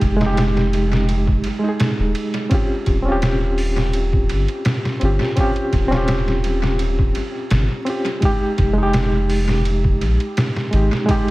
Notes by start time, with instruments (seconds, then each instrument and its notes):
Already playing: reed electric piano G#3 D#4 G4
0.01 sub bass F1, kick, ride
0.17 reed electric piano G#3
0.21 reed electric piano D#4, snare
0.26 reed electric piano G4
0.37 snare, ride
0.57 snare
0.73 ride
0.93 snare
1.09 ride
1.27 kick
1.44 ride
1.59 reed electric piano G#3
1.64 reed electric piano D#4
1.69 reed electric piano G#4
1.80 snare, ride
1.99 sub bass D#1
2.15 ride
2.34 ride
2.50 reed electric piano C4 C#4 F4, kick, ride
2.54 reed electric piano G4
2.86 sub bass D#1, kick, ride
3.02 reed electric piano C4 C#4
3.08 reed electric piano F4 G4
3.22 snare, ride
3.58 open hi-hat
3.78 snare
3.93 ride
4.13 kick
4.29 sub bass G1, ride
4.48 ride
4.65 snare, ride
4.85 snare
5.00 sub bass G1, reed electric piano C4 C#4 F4, ride
5.05 reed electric piano G4
5.21 snare
5.36 reed electric piano C4 C#4 F4, kick, ride
5.41 reed electric piano G4
5.56 ride
5.73 sub bass D#1, kick, ride
5.88 reed electric piano C4 C#4
5.92 reed electric piano F4, snare
5.98 reed electric piano G4
6.08 snare, ride
6.28 snare
6.44 ride
6.64 snare
6.79 ride
6.99 kick
7.15 ride
7.50 sub bass G1, snare, ride
7.85 reed electric piano C4 C#4 F4, ride
7.90 reed electric piano G4
8.06 ride
8.20 reed electric piano G#3 D#4, kick, ride
8.25 reed electric piano G4
8.58 sub bass F1, kick, ride
8.73 reed electric piano G#3
8.78 reed electric piano D#4
8.83 reed electric piano G4
8.93 snare, ride
9.30 open hi-hat
9.49 snare
9.65 ride
9.84 kick
10.01 sub bass A#1, ride
10.20 ride
10.37 snare, ride
10.56 snare
10.71 sub bass G#1, reed electric piano G#3 D#4, ride
10.76 reed electric piano G4
10.93 snare
11.06 reed electric piano G#3 D#4, kick, ride
11.11 reed electric piano G4